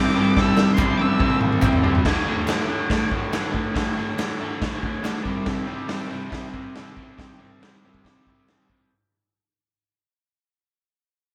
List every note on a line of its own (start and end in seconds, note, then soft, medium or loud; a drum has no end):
0.00 0.14 C3 medium
0.00 0.16 G3 medium
0.00 0.16 C4 medium
0.00 0.27 E4 medium
0.00 0.27 G4 medium
0.00 0.28 C5 medium
0.00 0.41 D6 medium
0.16 0.36 C3 medium
0.16 0.37 G3 loud
0.16 0.37 C4 medium
0.37 0.76 C3 loud
0.37 0.77 G3 loud
0.37 0.77 C4 loud
0.37 0.69 E4 loud
0.37 0.69 G4 medium
0.37 0.69 A4 loud
0.37 kick loud
0.37 snare medium
0.41 0.72 E6 loud
0.57 snare medium
0.57 clap medium
0.74 0.98 C3 loud
0.74 0.99 G3 loud
0.74 0.97 C6 medium
0.74 clap medium
0.78 0.99 C4 loud
0.78 1.11 E4 medium
0.78 1.12 G4 medium
0.78 1.12 C5 medium
0.78 kick loud
0.78 high tom medium
0.97 1.19 C3 medium
0.97 1.19 G3 loud
0.97 1.20 C4 loud
0.97 1.02 D6 medium
0.97 high tom loud
1.01 1.40 E6 medium
1.19 1.61 C3 loud
1.19 1.62 G3 loud
1.19 1.63 C4 loud
1.19 kick loud
1.19 mid tom medium
1.23 1.55 E4 medium
1.23 1.54 G4 medium
1.23 1.54 C5 medium
1.30 mid tom medium
1.41 mid tom loud
1.52 mid tom medium
1.62 1.82 C3 medium
1.62 1.83 G3 medium
1.62 1.84 C4 medium
1.62 1.95 E4 medium
1.62 1.96 G4 medium
1.62 1.97 C5 loud
1.62 kick loud
1.62 clap medium
1.62 mid tom medium
1.73 floor tom loud
1.83 2.04 C3 medium
1.83 2.04 G3 loud
1.83 2.05 C4 loud
1.83 floor tom loud
1.95 floor tom loud
2.05 2.26 D2 loud
2.05 2.27 A2 loud
2.05 2.28 D3 loud
2.05 2.39 F#4 medium
2.05 2.39 A4 medium
2.05 2.39 D5 medium
2.05 kick loud
2.05 snare loud
2.05 crash loud
2.27 2.47 D2 medium
2.27 2.46 A2 medium
2.27 2.48 D3 loud
2.47 2.66 D2 medium
2.47 2.66 A2 medium
2.47 2.67 D3 loud
2.47 snare loud
2.47 clap medium
2.47 open hi-hat medium
2.51 2.82 F#4 medium
2.51 2.82 A4 medium
2.51 2.83 E5 medium
2.67 2.88 D2 medium
2.67 2.89 A2 medium
2.67 2.89 D3 medium
2.89 3.09 D2 medium
2.89 3.10 A2 loud
2.89 3.10 D3 loud
2.89 3.24 F#4 medium
2.89 3.23 A4 medium
2.89 3.24 C5 medium
2.89 kick loud
2.89 snare loud
2.89 open hi-hat soft
3.10 3.31 D2 medium
3.10 3.32 A2 medium
3.10 3.32 D3 medium
3.10 kick medium
3.32 3.50 D2 medium
3.32 3.51 A2 loud
3.32 3.51 D3 loud
3.32 snare loud
3.32 clap medium
3.32 open hi-hat soft
3.36 3.67 F#4 medium
3.36 3.67 A4 medium
3.36 3.67 B4 medium
3.52 3.73 D2 medium
3.52 3.73 A2 medium
3.52 3.74 D3 loud
3.52 kick medium
3.74 3.94 D2 loud
3.74 3.95 A2 loud
3.74 3.96 D3 loud
3.74 kick loud
3.74 snare loud
3.74 open hi-hat soft
3.79 4.10 F#4 medium
3.79 4.10 A4 medium
3.79 4.10 E5 medium
3.96 4.16 D2 medium
3.96 4.16 A2 medium
3.96 4.17 D3 medium
4.17 4.38 D2 medium
4.17 4.39 A2 loud
4.17 4.40 D3 loud
4.17 snare loud
4.17 clap medium
4.17 open hi-hat medium
4.23 4.53 F#4 medium
4.23 4.53 A4 medium
4.23 4.53 D5 medium
4.39 4.60 D2 medium
4.39 4.61 A2 medium
4.39 4.61 D3 loud
4.61 4.82 D2 medium
4.61 4.82 A2 loud
4.61 4.83 D3 loud
4.61 4.95 A4 medium
4.61 4.95 C5 medium
4.61 kick loud
4.61 snare loud
4.61 open hi-hat medium
4.66 4.96 F#4 medium
4.83 5.02 D2 medium
4.83 5.02 A2 medium
4.83 5.03 D3 medium
4.83 kick medium
5.03 5.23 D2 medium
5.03 5.23 A2 loud
5.03 5.24 D3 loud
5.03 snare loud
5.03 clap medium
5.03 open hi-hat soft
5.08 5.27 F#4 medium
5.08 5.28 A4 medium
5.08 5.28 D5 medium
5.23 5.46 C3 medium
5.23 5.46 G3 medium
5.23 5.46 C4 medium
5.23 kick medium
5.29 5.78 G4 medium
5.29 5.78 C5 medium
5.29 5.79 E5 loud
5.46 5.66 C3 loud
5.46 5.66 G3 loud
5.46 5.67 C4 loud
5.46 kick loud
5.46 snare loud
5.46 open hi-hat soft
5.66 5.87 C3 medium
5.66 5.88 G3 loud
5.66 5.88 C4 medium
5.87 6.09 C3 medium
5.87 6.10 G3 loud
5.87 6.10 C4 loud
5.87 snare loud
5.87 open hi-hat medium
5.91 6.23 G4 medium
5.91 6.23 C5 medium
5.91 6.23 E5 medium
6.09 6.29 C3 medium
6.09 6.30 G3 medium
6.09 6.30 C4 medium
6.29 6.51 C3 loud
6.29 6.52 G3 loud
6.29 6.53 C4 loud
6.29 6.65 G4 medium
6.29 kick loud
6.29 snare medium
6.29 open hi-hat medium
6.34 6.66 C5 medium
6.34 6.66 E5 medium
6.52 6.74 C3 medium
6.52 6.75 G3 medium
6.52 6.76 C4 loud
6.52 kick medium
6.73 6.96 C3 medium
6.73 6.96 G3 medium
6.73 6.97 C4 medium
6.73 7.07 G4 medium
6.73 7.07 C5 medium
6.73 7.08 E5 medium
6.73 snare loud
6.73 open hi-hat soft
6.96 7.16 C3 medium
6.96 7.16 G3 medium
6.96 7.17 C4 medium
6.96 kick medium
7.17 7.38 C3 medium
7.17 7.38 G3 loud
7.17 7.39 C4 medium
7.17 7.51 G4 medium
7.17 7.52 C5 medium
7.17 7.51 G5 medium
7.17 kick loud
7.17 snare loud
7.17 open hi-hat medium
7.39 7.60 C3 medium
7.39 7.61 G3 medium
7.39 7.61 C4 medium
7.60 7.84 C3 loud
7.60 7.84 G3 loud
7.60 7.85 C4 loud
7.60 7.93 G4 medium
7.60 7.94 C5 medium
7.60 7.94 D5 medium
7.60 snare loud
7.60 open hi-hat medium
7.85 8.03 C3 medium
7.85 8.04 G3 medium
7.85 8.04 C4 medium
7.94 kick medium
8.01 8.26 C3 medium
8.01 8.27 G3 medium
8.01 8.35 G4 medium
8.01 8.36 C5 medium
8.01 8.36 E5 medium
8.01 kick medium
8.05 8.27 C4 loud
8.05 snare loud
8.05 open hi-hat soft
8.27 8.47 C3 medium
8.27 8.47 G3 medium
8.27 8.48 C4 medium
8.27 kick medium
8.48 8.68 C3 medium
8.48 8.69 G3 medium
8.48 8.70 C4 medium
8.48 8.80 G4 medium
8.48 8.80 C5 medium
8.48 8.81 D5 medium
8.48 snare loud
8.48 open hi-hat soft
8.69 8.89 C3 medium
8.69 8.90 G3 medium
8.69 8.90 C4 medium
8.69 kick medium